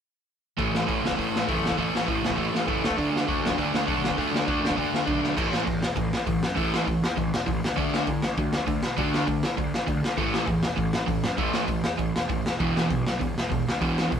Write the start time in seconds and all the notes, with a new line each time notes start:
0.58 A1 A2 E3 A3, kick, open hi-hat
0.72 A1, snare
0.87 A1 A2 E3 A3, kick, open hi-hat
1.03 C#2, snare
1.11 kick
1.18 A1 A2 E3 A3, kick, open hi-hat
1.31 A1
1.36 snare
1.48 F#1 A2 E3 A3, kick, open hi-hat
1.66 snare
1.71 kick
1.78 A1 A2 E3 A3, kick, open hi-hat
1.91 A1
1.95 snare
2.07 A1 A2 E3 A3, kick, open hi-hat
2.21 C#2, snare
2.31 kick
2.36 A1 A2 E3 A3, kick, open hi-hat
2.51 A1, snare
2.67 F#1 A2 E3 A3, kick, open hi-hat
2.82 D2, snare
2.91 kick
2.97 D2 D3 A3 D4, kick, open hi-hat
3.11 D2
3.16 snare
3.27 D2 D3 A3 D4, kick, open hi-hat
3.43 F#2, snare
3.51 kick
3.58 D2 D3 A3 D4, kick, open hi-hat
3.74 D2, snare
3.87 B1 D3 A3 D4, kick, open hi-hat
4.04 snare
4.11 kick
4.17 D2 D3 A3 D4, kick, open hi-hat
4.32 D2, snare
4.47 D2 D3 A3 D4, kick, open hi-hat
4.61 F#2
4.65 snare
4.71 kick
4.76 D2 D3 A3 D4, kick, open hi-hat
4.93 D2, snare
5.06 B1 D3 A3 D4, kick, open hi-hat
5.24 snare
5.37 A1 A2 E3 A3, kick, crash
5.50 A1, snare
5.65 E2 A2 E3, kick, open hi-hat
5.81 E1, snare
5.96 A1 A2 E3, kick, open hi-hat
6.11 A1, snare
6.27 A1 A2 E3, kick, open hi-hat
6.41 F#2, snare
6.55 A1 A2 E3 A3, kick, open hi-hat
6.74 snare
6.87 A1 A2 E3, kick, open hi-hat
7.02 E2, snare
7.17 A1 A2 E3, kick, open hi-hat
7.32 E1, snare
7.47 A1 A2 E3, kick, open hi-hat
7.61 D2, snare
7.76 D2 D3 A3 D4, kick, open hi-hat
7.91 D2, snare
8.07 A2 D3 A3, kick, open hi-hat
8.22 A1, snare
8.37 D2 D3 A3, kick, open hi-hat
8.53 D2, snare
8.67 D2 D3 A3, kick, open hi-hat
8.83 B2, snare
8.97 D2 D3 A3 D4, kick, open hi-hat
9.14 snare
9.27 D2 D3 A3, kick, open hi-hat
9.43 A2, snare
9.57 D2 D3 A3, kick, open hi-hat
9.74 A1, snare
9.87 D2 D3 A3, kick, open hi-hat
10.02 D3, snare
10.17 A1 A2 E3 A3, kick, open hi-hat
10.32 A1, snare
10.46 E2 A2 E3, kick, open hi-hat
10.63 E1, snare
10.77 A1 A2 E3, kick, open hi-hat
10.93 A1, snare
11.07 A1 A2 E3, kick, open hi-hat
11.22 F#2, snare
11.38 A1 A2 E3 A3, kick, open hi-hat
11.54 snare
11.67 A1 A2 E3, kick, open hi-hat
11.84 E2, snare
11.98 A1 A2 E3, kick, open hi-hat
12.15 E1, snare
12.29 A1 A2 E3, kick, open hi-hat
12.46 E1, snare
12.60 E1 E2 B2 E3, kick, open hi-hat
12.75 E1, snare
12.90 B1 E2 B2, kick, open hi-hat
13.06 B1, snare
13.20 E1 E2 B2, kick, open hi-hat
13.36 E1, snare
13.50 E1 E2 B2, kick, open hi-hat
13.67 D2, snare
13.81 E1 E2 B2 E3, kick, open hi-hat
13.98 snare
14.11 E1 E2 B2, kick, open hi-hat